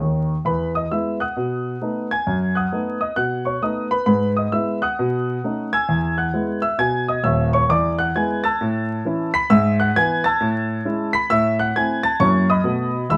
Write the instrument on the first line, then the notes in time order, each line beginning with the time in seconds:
grand piano
0.00 D#2 D#3
0.45 E2 B4 B5
0.75 D#5 D#6
0.91 G#3 B3 E4 E5 E6
1.20 F#5 D#6 F#6
1.37 B2
1.82 A3 B3 D#4
2.11 G#5 G#6
2.27 F#2
2.55 F#5 D#6 F#6
2.72 A3 B3 D#4
3.01 D#5 D#6
3.16 B2 F#5 F#6
3.45 C#5 C#6
3.62 A3 B3 D#4 D#5 D#6
3.91 B4 B5
4.06 G#2 B4 B5
4.37 D#5 D#6
4.52 G#3 B3 E4 E5 E6
4.82 F#5 D#6 F#6
4.99 B2
5.44 A3 C#4 D#4
5.73 G#5 E6 G#6
5.89 E2
6.18 F#5 F#6
6.34 G#3 B3 E4
6.62 E5 E6
6.78 B2 G#5 G#6
7.08 D#5 D#6
7.23 D#1 D#2 E5 E6
7.53 C#5 C#6
7.69 E2 D5 D6
7.98 F#5 F#6
8.15 G#3 B3 E4 G#5 G#6
8.44 A5 E6 A6
8.61 A2
9.05 E3 C#4 E4
9.34 B5 B6
9.50 G#2 E5 E6
9.80 F#5 F#6
9.96 E3 B3 E4 G#5 G#6
10.24 A5 E6 A6
10.41 A2
10.85 G#3 C#4 E4
11.13 B5 B6
11.30 A2 E5 E6
11.59 F#5 F#6
11.76 A3 C4 E4 G#5 G#6
12.03 A5 A6
12.20 F#2 A#3 C#4 E4 C#5 C#6
12.50 D#5 B5 D#6
12.64 B2 A3 B3 F#4
13.10 E2 G#3 E5 B5 E6